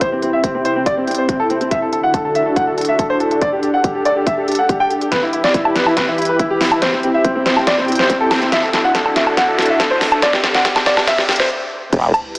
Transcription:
Already playing: E4 G4
0.01 C3 C4 C5 G5, kick, closed hi-hat
0.12 C4
0.22 C4, closed hi-hat
0.33 E5
0.44 C4, kick, closed hi-hat
0.55 C4
0.65 C5, closed hi-hat
0.76 C4
0.86 D5, kick, closed hi-hat
0.97 C4
1.07 C4, closed hi-hat
1.11 closed hi-hat
1.15 C5, closed hi-hat
1.29 C4, kick, closed hi-hat
1.40 A4
1.50 C4, closed hi-hat
1.61 C4, closed hi-hat
1.71 D3 D4 F#4 A4 E5, kick, closed hi-hat
1.82 A4
1.93 A4, closed hi-hat
2.03 F#5
2.14 A4, kick, closed hi-hat
2.25 A4
2.35 E5, closed hi-hat
2.46 A4
2.56 F#5, kick, closed hi-hat
2.67 A4
2.78 A4, closed hi-hat
2.81 closed hi-hat
2.85 E5, closed hi-hat
2.99 A4, kick, closed hi-hat
3.10 C5
3.20 A4, closed hi-hat
3.31 A4, closed hi-hat
3.42 G4 A4 D5, kick, closed hi-hat
3.52 G4
3.63 G4, closed hi-hat
3.74 F#5
3.84 G4, kick, closed hi-hat
3.95 G4
4.05 D5, closed hi-hat
4.16 G4
4.27 E5, kick, closed hi-hat
4.38 G4
4.48 G4, closed hi-hat
4.52 closed hi-hat
4.55 F#5, closed hi-hat
4.69 G4, kick, closed hi-hat
4.80 G5
4.90 G4, closed hi-hat
5.01 G4, closed hi-hat
5.12 E3 E4 B4 B5, kick, snare, closed hi-hat, riser
5.23 E4
5.33 E4, closed hi-hat
5.44 D5, snare
5.54 E4, kick, closed hi-hat
5.65 E4, low woodblock
5.76 B4, snare, closed hi-hat
5.87 E4, low woodblock
5.97 B4, kick, snare, closed hi-hat
6.08 E4
6.18 E4, closed hi-hat
6.22 closed hi-hat
6.25 B4, closed hi-hat
6.39 E4, kick, closed hi-hat
6.50 G4
6.61 E4, snare, open hi-hat
6.72 E4, closed hi-hat, low woodblock
6.82 C3 C4 C5 G5, kick, snare, closed hi-hat
6.93 C4
7.03 C4, closed hi-hat
7.14 E5
7.25 C4, kick, closed hi-hat
7.35 C4
7.46 C5, snare, closed hi-hat
7.57 C4, low woodblock
7.67 D5, kick, snare, closed hi-hat
7.78 C4
7.88 C4, closed hi-hat
7.92 closed hi-hat
7.95 C5, snare, closed hi-hat
8.10 C4, kick, closed hi-hat
8.21 A4
8.31 C4, snare, open hi-hat, low woodblock
8.42 C4, closed hi-hat
8.52 D3 D4 F#4 A4 E5, kick, snare, closed hi-hat
8.63 A4
8.73 A4, snare, closed hi-hat
8.84 F#5
8.95 A4, kick, snare, closed hi-hat
9.06 A4, low woodblock
9.16 E5, snare, closed hi-hat
9.27 A4, low woodblock
9.37 F#5, kick, snare, closed hi-hat
9.48 A4
9.59 A4, snare, closed hi-hat
9.62 closed hi-hat
9.66 E5, closed hi-hat
9.80 A4, kick, snare, closed hi-hat
9.91 C5
10.01 A4, snare, open hi-hat
10.12 A4, closed hi-hat, low woodblock
10.22 G4 D5, kick, snare, closed hi-hat
10.33 G4, snare
10.44 G4, snare, closed hi-hat
10.55 F#5, snare
10.65 G4, kick, snare, closed hi-hat
10.76 G4, snare, low woodblock
10.86 D5, snare, closed hi-hat
10.97 G4, snare, low woodblock
11.07 E5, kick, snare, closed hi-hat
11.18 G4, snare
11.29 G4, snare, closed hi-hat
11.32 closed hi-hat
11.36 C5, snare, closed hi-hat
11.93 E1 E4 G4 B4, kick, closed hi-hat, crash, sub drop
12.14 closed hi-hat, low woodblock
12.35 closed hi-hat

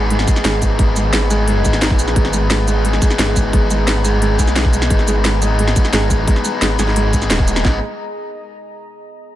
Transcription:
Already playing: G#1 B3 D#4 G#4 D#5 B5
0.10 G#3, closed hi-hat
0.19 snare
0.28 G#3, kick, closed hi-hat, shaker
0.36 snare, shaker
0.45 G#1 G#3, snare, closed hi-hat
0.62 G#3, kick, closed hi-hat, shaker
0.79 G#1 G#3, kick, closed hi-hat
0.96 G#3, closed hi-hat, shaker
1.13 G#1 G#3, snare, closed hi-hat, shaker
1.30 G#3 B3 D#4 G#4, closed hi-hat, shaker
1.48 G#3, closed hi-hat
1.65 G#1 G#3, kick, closed hi-hat, shaker
1.73 snare, shaker
1.82 D#4, snare, closed hi-hat
1.90 kick
1.99 A#1, closed hi-hat, shaker
2.08 snare, shaker
2.16 G#1 G#3 A#5, kick, closed hi-hat
2.25 snare
2.33 G#3, closed hi-hat, shaker
2.50 G#3, snare, closed hi-hat, shaker
2.67 G#3 B3 D#4 G#4, closed hi-hat, shaker
2.85 G#3, closed hi-hat
2.93 snare
3.02 G#3, kick, closed hi-hat, shaker
3.10 snare, shaker
3.19 G#1 G#3, snare, closed hi-hat
3.36 G#3, kick, closed hi-hat, shaker
3.53 G#1 G#3, kick, closed hi-hat
3.70 G#3, closed hi-hat, shaker
3.88 G#3, snare, closed hi-hat, shaker
4.04 G#3 B3 D#4 G#4, closed hi-hat, shaker
4.22 G#3, closed hi-hat
4.39 B1 G#3, kick, closed hi-hat, shaker
4.48 snare, shaker
4.56 G#3, snare, closed hi-hat
4.65 kick
4.73 G#3, closed hi-hat, shaker
4.82 snare, shaker
4.90 G#1 G#3, kick, closed hi-hat
4.99 snare
5.08 G#3, closed hi-hat, shaker
5.25 G#3, snare, closed hi-hat, shaker
5.42 G#3 B3 D#4 G#4, closed hi-hat, shaker
5.59 G#3, closed hi-hat
5.68 snare
5.76 G#3, kick, closed hi-hat, shaker
5.85 snare, shaker
5.93 G#1 G#3, snare, closed hi-hat
6.10 G#3, kick, closed hi-hat, shaker
6.28 G#3, kick, closed hi-hat
6.36 snare
6.45 G#3, closed hi-hat, shaker
6.62 G#1 G#3, snare, closed hi-hat, shaker
6.79 G#1 G#3 B3 D#4 G#4, snare, closed hi-hat, shaker
6.88 snare
6.96 G#3, closed hi-hat
7.13 G#3, kick, closed hi-hat, shaker
7.22 snare, shaker
7.30 D#1 G#3, snare, closed hi-hat
7.39 kick
7.48 G#3, closed hi-hat, shaker
7.56 snare, shaker
7.65 G#1 G#3 B3 D#4 G#4, kick, snare, clap

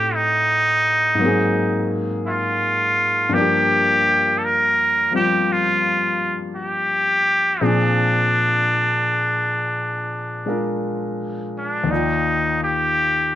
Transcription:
Already playing: A2 A3 C4 D#4 G4
0.15 D#4
1.15 G#2 F#3
1.21 A#3 C4
1.26 G#4
2.25 E4 F4
3.29 G2 F3
3.33 A#3 D4 G4
3.40 G4
4.38 A4
4.44 A#4
5.11 F3 G3 C4
5.15 F4 G4
5.52 F4
6.55 G4
7.61 A#2 F3 C4 D4 G#4
10.46 G#3 D4 F4 A#4
11.58 D4
11.84 D#2 D#3
11.90 D#4 F4 D5
11.95 G5
12.64 G4

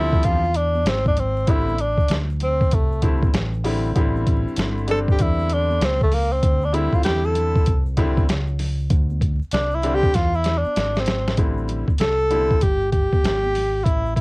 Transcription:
Already playing: D2 D3 F3 G3 C4 E4
0.13 kick, shaker
0.23 E2 F4, kick, closed hi-hat, shaker
0.44 shaker
0.54 D4, closed hi-hat, shaker
0.75 high conga, shaker
0.85 G#1 C4, snare, closed hi-hat, shaker
1.05 D4, kick, high conga, shaker
1.17 C4, closed hi-hat, low conga, shaker
1.37 shaker
1.47 A1 D3 G3 C4 E4, kick, closed hi-hat, shaker
1.69 high conga, shaker
1.79 D4, closed hi-hat, shaker
1.98 muted fingered electric bass stroke, kick, shaker
2.09 D2, snare, closed hi-hat, shaker
2.30 shaker
2.40 C4, closed hi-hat, low conga, shaker
2.61 kick, shaker
2.71 C2 A3, kick, closed hi-hat, shaker
2.92 shaker
3.02 D3 G3 C4 E4, kick, closed hi-hat, shaker
3.23 kick, high conga, shaker
3.33 A1, snare, closed hi-hat, shaker
3.53 shaker
3.64 D3 G3 C4 E4, open hi-hat, low conga, shaker
3.85 shaker
3.95 A1 D3 G3 C4 E4, kick, closed hi-hat, shaker
4.16 high conga, shaker
4.26 kick, closed hi-hat, shaker
4.47 muted fingered electric bass stroke, shaker
4.56 G1, snare, closed hi-hat, shaker
4.77 shaker
4.87 D3 G3 C4 D4 A4, closed hi-hat, low conga, shaker
5.08 G4, kick, shaker
5.19 E2 E4, kick, closed hi-hat, shaker
5.39 shaker
5.50 D4, closed hi-hat, shaker
5.71 high conga, shaker
5.81 C#2 C4, snare, closed hi-hat, shaker
6.00 A3, kick, shaker
6.12 A#3, open hi-hat, low conga, shaker
6.31 C4, shaker
6.43 D2, kick, closed hi-hat, shaker
6.62 D4, high conga, shaker
6.73 D3 G3 C4 E4, closed hi-hat, shaker
6.93 F4, muted fingered electric bass stroke, kick, shaker
7.03 E2 G4, snare, closed hi-hat, shaker
7.24 A4, shaker
7.35 closed hi-hat, low conga, shaker
7.56 kick, shaker
7.65 C2, kick, closed hi-hat, shaker
7.86 shaker
7.97 D3 G3 C4 E4, kick, closed hi-hat, shaker
8.17 kick, high conga, shaker
8.29 C#2, snare, closed hi-hat, shaker
8.47 shaker
8.59 open hi-hat, low conga, shaker
8.79 shaker
8.90 D2, kick, closed hi-hat, shaker
9.10 high conga, shaker
9.21 kick, closed hi-hat, shaker
9.42 muted fingered electric bass stroke, shaker
9.51 C2 D4, snare, closed hi-hat, shaker
9.71 E4, shaker
9.82 D3 G3 C4 D4, closed hi-hat, low conga, shaker
9.95 G4
10.03 kick, shaker
10.13 E2 F4, kick, snare, closed hi-hat, shaker
10.34 E4, shaker
10.44 snare, closed hi-hat, shaker
10.58 D4
10.65 muted fingered electric bass stroke, high conga, shaker
10.76 G#1, snare, closed hi-hat, shaker
10.95 snare, shaker
10.99 C4
11.06 snare, closed hi-hat, low conga, shaker
11.28 snare, shaker
11.37 A1 D3 G3 C4 E4, kick, closed hi-hat, shaker
11.58 shaker
11.68 closed hi-hat, low conga, shaker
11.88 kick, high conga, shaker
11.98 C2 A4, snare, closed hi-hat, shaker
12.19 shaker
12.30 D3 G3 C4 E4, closed hi-hat, high conga, low conga, shaker
12.51 kick, shaker
12.61 G1 G4, kick, closed hi-hat, shaker
12.81 shaker
12.92 G4, kick, closed hi-hat, shaker
13.13 muted fingered electric bass stroke, kick, high conga, shaker
13.23 G#1, snare, closed hi-hat, shaker
13.43 high conga, shaker
13.55 open hi-hat, low conga, shaker
13.75 shaker
13.84 A1 E4, kick, closed hi-hat, shaker
14.06 shaker
14.16 E4, kick, closed hi-hat, low conga, shaker

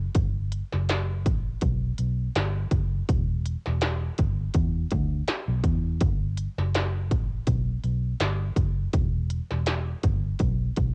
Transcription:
0.15 G1, kick, closed hi-hat
0.52 closed hi-hat
0.73 F#1, snare
0.89 snare, closed hi-hat
1.26 A1, kick, closed hi-hat
1.61 B1, kick, closed hi-hat
1.98 B1, closed hi-hat
2.35 G1, snare, closed hi-hat
2.71 F#1, kick, closed hi-hat
3.09 E1, kick, closed hi-hat
3.45 closed hi-hat
3.66 E1, snare
3.81 snare, closed hi-hat
4.18 G1, kick, closed hi-hat
4.54 E2, kick, closed hi-hat
4.91 D2, kick, closed hi-hat
5.28 muted fingered electric bass stroke, snare, closed hi-hat
5.48 B1
5.64 E2, kick, closed hi-hat
6.01 G1, kick, closed hi-hat
6.37 closed hi-hat
6.58 F#1, snare
6.74 snare, closed hi-hat
7.11 A1, kick, closed hi-hat
7.47 B1, kick, closed hi-hat
7.84 B1, closed hi-hat
8.20 G1, snare, closed hi-hat
8.56 F#1, kick, closed hi-hat
8.93 E1, kick, closed hi-hat
9.30 closed hi-hat
9.51 E1, snare
9.66 snare, closed hi-hat
10.03 G1, kick, closed hi-hat
10.39 B1, kick, closed hi-hat
10.76 B1, kick, closed hi-hat

